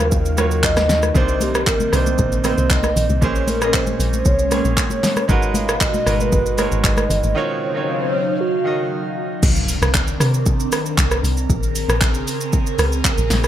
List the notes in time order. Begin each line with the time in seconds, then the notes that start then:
Already playing: D#2 C#3 D#3 F#3 A#3 D#4 F4 F#4 A#4 C#5 F5
0.00 cross-stick, high conga, shaker
0.12 kick, shaker
0.25 shaker
0.37 D#3 A#3 F4 F#4 C#5, cross-stick, high conga, shaker
0.51 shaker
0.63 D#5, kick, clap, shaker
0.76 cross-stick, snare, high conga, shaker
0.89 snare, low conga, shaker
1.03 cross-stick, high conga, shaker
1.14 C2 A#2 C3 D#3 A#3 C4 D4 D#4 C5, kick, low conga, shaker
1.29 shaker
1.40 G4, open hi-hat, high conga, shaker
1.55 cross-stick, shaker
1.67 A#4, kick, clap, shaker
1.80 high conga, shaker
1.92 C2 C3 A#3 D4 D#4 C5, cross-stick, open hi-hat, shaker
2.06 high conga, shaker
2.18 A#1, kick, shaker
2.32 shaker
2.44 C3 A#3 C4 D#4 C5, cross-stick, open hi-hat, high conga, shaker
2.58 C2, shaker
2.70 C2 D#5, kick, clap, shaker
2.83 cross-stick, high conga, shaker
2.96 A#1, open hi-hat, low conga, shaker
3.09 C2, high conga, shaker
3.21 A#1 A#2 G#3 A#3 C#4 G#4 C5 C#5, kick, low conga, shaker
3.35 shaker
3.47 A#4, open hi-hat, high conga, shaker
3.61 A#2 A#3 C#4 G#4 D#5, cross-stick, shaker
3.74 C5, kick, clap, shaker
3.87 high conga, shaker
4.00 A#1, open hi-hat, shaker
4.13 high conga, shaker
4.25 C2 C#5, kick, shaker
4.39 shaker
4.51 A#2 A#3 C4 G#4 C#5, cross-stick, open hi-hat, high conga, shaker
4.58 C#4
4.65 A#1, shaker
4.77 C#5, kick, clap, shaker
4.90 high conga, shaker
5.03 snare, open hi-hat, low conga, shaker
5.16 cross-stick, high conga, shaker
5.28 G#1 B2 G#3 D#4 F#4 A#4 B4 F#5, kick, swell, low conga, shaker
5.42 shaker
5.54 F5, open hi-hat, high conga, shaker
5.69 cross-stick, shaker
5.75 F5
5.81 D#5, kick, clap, shaker
5.94 high conga, shaker
6.06 G#1 G#3 D#4 F#4 A#4 B4, cross-stick, open hi-hat, shaker
6.20 B4, high conga, shaker
6.32 G1, kick, shaker
6.46 shaker
6.57 G#3 D#4 F#4 A#4 C#5, cross-stick, open hi-hat, high conga, shaker
6.72 G#1, shaker
6.84 G#1 D#5, kick, clap, shaker
6.97 cross-stick, high conga, shaker
7.10 G1, open hi-hat, low conga, shaker
7.23 G#1, high conga, shaker
7.35 C#3 D#3 F#3 D#4 F4 F#4 C#5 F5
7.74 D#3 D#4 F4 F#4 C#5
8.40 F#4
8.64 D#3 D#4 F#4 D#5 F5
9.43 C2 D#3 C4 D4 A#4, kick, crash, impact, shaker
9.56 shaker
9.68 open hi-hat, shaker
9.82 C2, cross-stick, shaker
9.94 kick, clap, shaker
10.08 shaker
10.20 C3, cross-stick, open hi-hat, shaker
10.34 shaker
10.46 kick, shaker
10.60 shaker
10.72 cross-stick, open hi-hat, shaker
10.86 shaker
10.98 C2, kick, clap, shaker
11.11 cross-stick, shaker
11.23 C2, open hi-hat, shaker
11.37 shaker
11.50 A#1 C#3 C4 G#4, kick, shaker
11.63 shaker
11.75 open hi-hat, shaker
11.89 A#1, cross-stick, shaker
12.01 kick, clap, shaker
12.14 shaker
12.28 open hi-hat, shaker
12.41 shaker
12.53 kick, shaker
12.67 shaker
12.79 C#2, cross-stick, open hi-hat, shaker
12.92 shaker
13.05 kick, clap, shaker
13.18 A#1, shaker
13.30 A#1, snare, open hi-hat, shaker
13.44 cross-stick, shaker